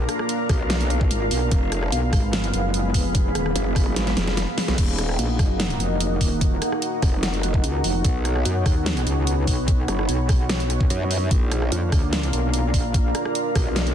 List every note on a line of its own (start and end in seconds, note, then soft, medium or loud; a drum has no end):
0.00 1.48 A#3 medium
0.00 1.48 D4 medium
0.00 1.51 D4 loud
0.00 4.74 F4 medium
0.00 1.51 A#4 medium
0.00 1.48 D5 medium
0.00 4.74 F5 medium
0.00 4.78 F5 medium
0.00 1.51 A#5 medium
0.09 cross-stick medium
0.09 closed hi-hat medium
0.19 cross-stick medium
0.29 closed hi-hat medium
0.49 1.09 B1 loud
0.49 kick loud
0.49 cross-stick medium
0.49 open hi-hat medium
0.70 snare loud
0.70 closed hi-hat medium
0.81 closed hi-hat soft
0.90 closed hi-hat medium
1.01 kick loud
1.11 1.29 G#1 loud
1.11 closed hi-hat medium
1.31 1.50 B1 loud
1.31 open hi-hat medium
1.51 1.91 F1 loud
1.51 4.75 G#3 medium
1.51 4.75 B3 medium
1.51 4.78 B3 medium
1.51 4.75 B4 medium
1.51 kick loud
1.51 closed hi-hat medium
1.72 6.09 G#4 medium
1.72 cross-stick medium
1.72 closed hi-hat medium
1.78 4.78 B5 medium
1.83 cross-stick medium
1.92 2.11 B1 loud
1.92 closed hi-hat medium
2.13 2.52 G#1 loud
2.13 kick loud
2.13 cross-stick medium
2.13 open hi-hat medium
2.33 snare loud
2.33 closed hi-hat medium
2.44 closed hi-hat soft
2.54 2.93 F#1 loud
2.54 closed hi-hat medium
2.74 closed hi-hat medium
2.94 3.34 F1 loud
2.94 kick medium
2.94 open hi-hat loud
3.15 kick loud
3.15 closed hi-hat medium
3.35 3.54 D#1 loud
3.35 cross-stick medium
3.35 closed hi-hat medium
3.46 cross-stick medium
3.56 3.95 F#1 loud
3.56 closed hi-hat medium
3.76 kick loud
3.76 cross-stick medium
3.76 open hi-hat medium
3.96 4.15 G#1 loud
3.96 snare medium
3.96 closed hi-hat medium
4.07 snare medium
4.07 closed hi-hat soft
4.17 4.46 F1 loud
4.17 snare medium
4.17 closed hi-hat medium
4.27 snare medium
4.37 snare medium
4.37 closed hi-hat medium
4.58 snare loud
4.58 open hi-hat medium
4.68 4.76 B1 medium
4.68 snare medium
4.68 closed hi-hat soft
4.78 5.17 D#1 loud
4.78 8.01 A#3 medium
4.78 11.31 D#4 medium
4.78 11.27 D#4 medium
4.78 11.27 F#4 medium
4.78 8.01 D#5 medium
4.78 11.27 F#5 medium
4.78 kick loud
4.78 closed hi-hat medium
4.78 crash medium
4.85 11.31 F#5 medium
4.90 8.04 A#4 medium
4.98 cross-stick medium
4.98 closed hi-hat medium
5.09 cross-stick medium
5.19 5.38 A#1 loud
5.19 closed hi-hat medium
5.39 5.78 F#1 loud
5.39 kick loud
5.39 cross-stick medium
5.39 open hi-hat medium
5.50 8.04 A#5 medium
5.60 snare loud
5.60 closed hi-hat medium
5.70 closed hi-hat soft
5.80 6.19 F1 loud
5.80 closed hi-hat medium
6.00 closed hi-hat medium
6.21 6.60 D#1 loud
6.21 kick medium
6.21 open hi-hat loud
6.41 kick loud
6.41 closed hi-hat medium
6.62 cross-stick medium
6.62 closed hi-hat medium
6.72 cross-stick soft
6.82 closed hi-hat medium
7.02 7.62 F1 loud
7.02 kick loud
7.02 cross-stick medium
7.02 open hi-hat medium
7.23 snare loud
7.23 closed hi-hat medium
7.34 closed hi-hat soft
7.43 closed hi-hat medium
7.54 kick loud
7.64 7.83 C#2 medium
7.64 closed hi-hat medium
7.84 8.03 F1 loud
7.84 open hi-hat medium
8.04 8.44 B1 loud
8.04 11.28 B3 medium
8.04 11.28 C#5 medium
8.04 kick loud
8.04 closed hi-hat medium
8.25 cross-stick medium
8.25 closed hi-hat medium
8.29 11.31 C#5 medium
8.36 cross-stick medium
8.45 8.64 F#2 loud
8.45 11.31 B5 medium
8.45 closed hi-hat medium
8.66 9.05 D#2 loud
8.66 kick loud
8.66 cross-stick medium
8.66 open hi-hat medium
8.86 snare loud
8.86 closed hi-hat medium
8.97 closed hi-hat soft
9.07 9.46 C#2 loud
9.07 closed hi-hat medium
9.27 closed hi-hat medium
9.47 9.87 B1 loud
9.47 kick medium
9.47 open hi-hat medium
9.68 kick loud
9.68 closed hi-hat medium
9.88 10.07 F#1 medium
9.88 cross-stick medium
9.88 closed hi-hat medium
9.99 cross-stick medium
10.09 10.89 B1 loud
10.09 closed hi-hat medium
10.29 kick loud
10.29 cross-stick medium
10.29 open hi-hat medium
10.49 snare loud
10.49 closed hi-hat medium
10.60 closed hi-hat soft
10.70 closed hi-hat medium
10.80 kick loud
10.90 11.30 F#2 loud
10.90 closed hi-hat medium
11.11 open hi-hat medium
11.31 11.70 A#1 loud
11.31 13.94 A#3 medium
11.31 13.94 D4 medium
11.31 13.94 F4 medium
11.31 13.94 D5 medium
11.31 13.94 F5 medium
11.31 kick loud
11.31 closed hi-hat medium
11.51 13.94 A#4 medium
11.51 cross-stick medium
11.51 closed hi-hat medium
11.58 13.94 A#5 medium
11.58 cross-stick medium
11.72 11.91 F2 loud
11.72 closed hi-hat medium
11.82 13.94 F5 medium
11.92 12.32 D2 loud
11.92 kick loud
11.92 cross-stick medium
11.92 open hi-hat medium
12.13 snare loud
12.13 closed hi-hat medium
12.23 closed hi-hat soft
12.33 12.72 B1 loud
12.33 closed hi-hat medium
12.54 closed hi-hat medium
12.74 13.13 A#1 loud
12.74 kick medium
12.74 open hi-hat medium
12.94 kick loud
12.94 closed hi-hat medium
13.15 cross-stick medium
13.15 closed hi-hat medium
13.25 cross-stick medium
13.35 closed hi-hat medium
13.55 13.94 B1 loud
13.55 kick loud
13.55 cross-stick medium
13.55 open hi-hat medium
13.76 snare loud
13.76 closed hi-hat medium
13.87 closed hi-hat soft